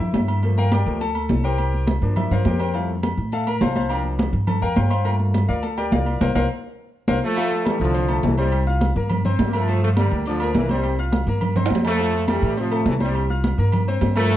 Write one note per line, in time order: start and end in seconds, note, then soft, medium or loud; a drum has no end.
0.00 0.13 F2 medium
0.00 0.38 D3 medium
0.00 0.39 F3 soft
0.00 0.39 A#3 medium
0.00 0.40 E4 medium
0.00 0.40 E5 medium
0.14 0.81 G2 medium
0.14 high conga medium
0.14 low timbale medium
0.14 low agogo medium
0.28 high conga soft
0.28 low agogo loud
0.43 0.62 F3 medium
0.43 0.62 A3 medium
0.43 0.63 A#3 medium
0.43 high conga soft
0.43 low agogo medium
0.57 0.72 A#4 medium
0.57 0.72 F5 medium
0.57 0.71 G5 medium
0.57 0.71 A#5 loud
0.57 high conga soft
0.72 0.99 G4 medium
0.72 0.99 A#4 medium
0.72 0.99 D5 medium
0.72 0.99 G5 medium
0.72 high conga medium
0.72 low timbale medium
0.72 low agogo loud
0.86 1.26 D2 loud
0.86 0.99 F3 medium
0.86 1.00 A3 soft
0.86 1.00 A#3 medium
1.01 1.41 A4 medium
1.01 1.41 A5 loud
1.01 high conga soft
1.01 low agogo medium
1.15 high conga soft
1.15 low agogo loud
1.29 1.96 C2 loud
1.29 high conga medium
1.29 low timbale medium
1.44 1.85 G4 medium
1.44 1.85 A#4 medium
1.44 1.85 C5 medium
1.44 1.85 G5 loud
1.44 low agogo medium
1.58 high conga soft
1.58 low agogo loud
1.74 high conga soft
1.87 high conga medium
1.87 low timbale medium
1.87 low agogo medium
2.02 2.29 G2 medium
2.02 2.43 F3 medium
2.02 2.43 A#3 medium
2.02 2.44 D4 medium
2.02 high conga soft
2.16 2.31 E4 medium
2.16 2.31 E5 medium
2.16 high conga soft
2.16 low conga medium
2.16 low agogo loud
2.31 2.44 G2 medium
2.31 2.46 F4 medium
2.31 2.46 A#4 medium
2.31 2.45 C5 medium
2.31 2.45 F5 medium
2.31 high conga soft
2.31 low conga medium
2.45 3.12 F2 loud
2.45 2.59 G4 medium
2.45 2.59 A#4 medium
2.45 2.59 C5 medium
2.45 2.59 G5 medium
2.45 high conga medium
2.45 low timbale medium
2.45 low agogo medium
2.60 2.74 G4 medium
2.60 2.74 A#4 medium
2.60 2.73 C5 medium
2.60 2.74 G5 medium
2.60 high conga soft
2.60 low agogo loud
2.74 2.93 G3 medium
2.74 2.94 A3 soft
2.74 2.94 E4 medium
2.74 2.89 F4 medium
2.74 2.89 A4 medium
2.74 2.88 C5 medium
2.74 2.88 F5 medium
2.74 high conga soft
2.74 low agogo medium
2.89 high conga soft
3.03 high conga medium
3.03 low timbale medium
3.03 low agogo loud
3.17 3.58 A2 medium
3.32 3.47 A4 medium
3.32 3.47 E5 medium
3.32 3.47 F5 medium
3.32 3.46 A5 medium
3.32 high conga soft
3.32 low agogo medium
3.47 3.61 A#4 medium
3.47 3.61 A#5 loud
3.47 high conga soft
3.47 low agogo loud
3.61 4.28 C2 loud
3.61 3.75 C5 medium
3.61 3.75 F5 medium
3.61 3.75 A5 medium
3.61 3.74 C6 medium
3.61 high conga medium
3.61 low timbale medium
3.76 3.90 C5 medium
3.76 3.89 F5 medium
3.76 3.90 A5 medium
3.76 3.90 C6 loud
3.76 high conga medium
3.76 low agogo medium
3.89 4.31 F3 medium
3.89 4.31 A#3 soft
3.89 4.31 D4 medium
3.89 4.04 A#4 medium
3.89 4.04 F5 medium
3.89 4.04 G5 medium
3.89 4.04 A#5 medium
3.89 high conga soft
3.89 low agogo loud
4.05 high conga soft
4.19 high conga loud
4.19 low timbale medium
4.19 low agogo medium
4.33 4.60 G2 loud
4.33 high conga soft
4.47 4.62 A4 medium
4.47 4.62 A5 medium
4.47 high conga soft
4.47 low conga medium
4.47 low agogo loud
4.62 4.76 F2 medium
4.62 4.76 A#4 medium
4.62 4.75 F5 medium
4.62 4.75 G5 medium
4.62 4.76 A#5 loud
4.62 high conga soft
4.76 5.43 G2 loud
4.76 4.89 C5 medium
4.76 4.89 F5 medium
4.76 4.90 G5 medium
4.76 4.89 C6 medium
4.76 high conga medium
4.76 low timbale medium
4.76 low agogo medium
4.90 5.05 C5 medium
4.90 5.04 F5 medium
4.90 5.04 G5 medium
4.90 5.05 C6 loud
4.90 high conga soft
4.90 low agogo loud
5.05 5.46 A3 medium
5.05 5.46 A#3 medium
5.05 5.47 F4 medium
5.05 5.14 A#4 medium
5.05 5.14 F5 medium
5.05 5.14 G5 medium
5.05 5.14 A#5 loud
5.05 high conga soft
5.05 low agogo medium
5.20 high conga soft
5.34 high conga medium
5.34 low timbale medium
5.34 low agogo loud
5.49 5.89 D2 medium
5.49 5.63 F4 medium
5.49 5.63 A#4 medium
5.49 5.63 D5 medium
5.49 5.63 F5 medium
5.63 5.77 A4 medium
5.63 5.77 A5 loud
5.63 high conga soft
5.63 low agogo medium
5.78 5.92 G4 medium
5.78 5.91 A#4 medium
5.78 5.91 D5 medium
5.78 5.92 G5 loud
5.78 high conga soft
5.78 low agogo loud
5.92 6.19 C2 loud
5.92 6.19 F4 medium
5.92 6.19 A#4 medium
5.92 6.19 D5 medium
5.92 6.19 F5 medium
5.92 high conga medium
5.92 low timbale loud
6.06 low agogo medium
6.21 6.32 C2 loud
6.21 6.30 A#4 medium
6.21 6.30 C5 medium
6.21 6.30 F5 medium
6.21 high conga loud
6.21 high timbale loud
6.35 6.46 C2 loud
6.35 6.45 A#4 loud
6.35 6.45 C5 loud
6.35 6.45 F5 loud
6.35 high conga loud
6.35 high timbale loud
7.08 7.19 C2 loud
7.08 7.17 A#4 loud
7.08 7.17 C5 loud
7.08 7.17 F5 loud
7.08 high conga loud
7.08 high timbale loud
7.24 7.63 F3 medium
7.24 7.64 A3 loud
7.37 7.61 F3 medium
7.37 7.61 F4 medium
7.37 7.61 F5 medium
7.37 high conga soft
7.37 low agogo medium
7.52 high conga soft
7.65 7.81 E3 medium
7.65 7.81 G3 loud
7.65 7.89 A3 medium
7.65 7.89 A4 medium
7.65 7.90 A5 medium
7.65 high conga loud
7.65 low timbale medium
7.65 low agogo loud
7.80 8.20 C2 loud
7.80 8.21 D3 medium
7.80 8.21 F3 loud
7.94 8.06 C4 medium
7.94 8.06 C5 medium
7.94 8.06 C6 medium
7.94 high conga soft
7.94 low agogo medium
8.08 8.33 A3 medium
8.08 8.33 A4 medium
8.08 8.33 A5 medium
8.08 high conga soft
8.08 low agogo loud
8.23 8.90 C2 loud
8.23 8.37 C3 medium
8.23 8.38 E3 medium
8.23 high conga medium
8.23 low timbale loud
8.37 8.65 C3 medium
8.37 8.65 G3 loud
8.37 8.62 C4 medium
8.37 8.62 C5 medium
8.37 8.62 C6 medium
8.37 low agogo medium
8.52 high conga soft
8.52 low agogo loud
8.67 8.91 F4 medium
8.67 8.91 F5 medium
8.67 8.91 F6 medium
8.67 high conga soft
8.81 high conga loud
8.81 low timbale medium
8.81 low agogo medium
8.96 9.36 G2 loud
8.96 9.20 A#3 medium
8.96 9.20 A#4 medium
8.96 9.20 A#5 medium
8.96 high conga soft
9.10 high conga soft
9.10 low conga medium
9.10 low agogo loud
9.25 9.49 C4 medium
9.25 9.49 C5 medium
9.25 9.49 C6 medium
9.25 high conga soft
9.25 low conga medium
9.39 10.06 G2 loud
9.39 high conga medium
9.39 low timbale medium
9.39 low agogo medium
9.47 9.54 A#3 medium
9.53 9.83 F3 loud
9.53 9.82 A3 loud
9.53 9.66 A#3 medium
9.53 9.66 A#4 medium
9.53 9.66 A#5 medium
9.53 high conga soft
9.53 low agogo loud
9.68 9.92 F3 medium
9.68 9.92 F4 medium
9.68 9.92 F5 medium
9.68 high conga soft
9.68 low agogo loud
9.83 9.90 F3 medium
9.83 9.89 A3 loud
9.83 high conga soft
9.97 10.24 D3 medium
9.97 10.24 G3 loud
9.97 10.21 A#3 medium
9.97 10.21 A#4 medium
9.97 10.21 A#5 medium
9.97 high conga loud
9.97 low timbale medium
9.97 low agogo loud
10.11 10.52 D2 loud
10.26 10.53 D3 medium
10.26 10.53 F3 loud
10.26 10.38 D4 medium
10.26 10.38 D5 medium
10.26 10.39 D6 medium
10.26 high conga soft
10.26 low agogo medium
10.40 10.65 A#3 medium
10.40 10.65 A#4 medium
10.40 10.65 A#5 medium
10.40 high conga soft
10.40 low agogo loud
10.55 11.22 C2 loud
10.55 10.69 A#2 medium
10.55 10.69 E3 medium
10.55 high conga medium
10.55 low timbale medium
10.69 10.97 C3 medium
10.69 10.97 G3 loud
10.69 10.94 C4 medium
10.69 10.94 C5 medium
10.69 10.94 C6 medium
10.69 high conga medium
10.69 low agogo medium
10.84 high conga soft
10.84 low agogo loud
10.98 11.22 F4 medium
10.98 11.22 F5 medium
10.98 11.23 F6 medium
10.98 high conga soft
11.12 high conga loud
11.12 low timbale medium
11.12 low agogo medium
11.27 11.67 G2 loud
11.27 11.51 A#3 medium
11.27 11.51 A#4 medium
11.27 11.52 A#5 medium
11.27 high conga soft
11.41 high conga soft
11.41 low conga medium
11.41 low agogo loud
11.56 11.80 C4 medium
11.56 11.80 C5 medium
11.56 11.80 C6 medium
11.56 high conga soft
11.56 low conga medium
11.56 high timbale medium
11.66 high timbale loud
11.70 12.37 F2 loud
11.70 high conga medium
11.70 low agogo medium
11.75 low timbale loud
11.85 12.26 F3 medium
11.85 11.97 A3 medium
11.85 12.26 A3 loud
11.85 11.97 A4 medium
11.85 11.97 A5 medium
11.85 high conga soft
11.85 low timbale medium
11.85 low agogo loud
11.99 12.23 F3 medium
11.99 12.23 F4 medium
11.99 12.23 F5 medium
11.99 high conga soft
11.99 low agogo medium
12.14 high conga soft
12.28 12.58 E3 medium
12.28 12.58 G3 loud
12.28 12.52 A3 medium
12.28 12.52 A4 medium
12.28 12.52 A5 medium
12.28 high conga loud
12.28 low timbale medium
12.28 low agogo loud
12.42 12.83 A2 loud
12.57 12.84 C3 medium
12.57 12.85 F3 loud
12.57 12.69 C4 medium
12.57 12.69 C5 medium
12.57 12.69 C6 medium
12.57 high conga soft
12.57 low agogo medium
12.71 12.95 A3 medium
12.71 12.95 A4 medium
12.71 12.95 A5 medium
12.71 high conga soft
12.71 low agogo loud
12.86 13.52 C2 loud
12.86 12.94 C3 medium
12.86 12.94 E3 medium
12.86 high conga medium
12.86 low timbale medium
13.00 13.28 C3 medium
13.00 13.28 G3 loud
13.00 13.24 C4 medium
13.00 13.24 C5 medium
13.00 13.25 C6 medium
13.00 high conga medium
13.00 low agogo loud
13.15 high conga soft
13.15 low agogo loud
13.30 13.53 F4 medium
13.30 13.53 F5 medium
13.30 13.54 F6 medium
13.30 high conga soft
13.44 high conga loud
13.44 low timbale medium
13.44 low agogo medium
13.58 13.98 G2 loud
13.58 13.82 A#3 medium
13.58 13.82 A#4 medium
13.58 13.82 A#5 medium
13.58 high conga soft
13.72 high conga soft
13.72 low conga medium
13.72 low agogo loud
13.88 14.11 C4 medium
13.88 14.11 C5 medium
13.88 14.12 C6 medium
13.88 high conga soft
14.01 14.37 G2 loud
14.01 high conga medium
14.01 low timbale medium
14.01 low agogo medium
14.16 14.37 F3 medium
14.16 14.37 A3 loud
14.16 14.28 A#3 medium
14.16 14.28 A#4 medium
14.16 14.29 A#5 medium
14.16 high conga soft
14.16 low agogo loud
14.30 14.37 F3 medium
14.30 14.37 F4 medium
14.30 14.37 F5 medium
14.30 high conga soft
14.30 low agogo medium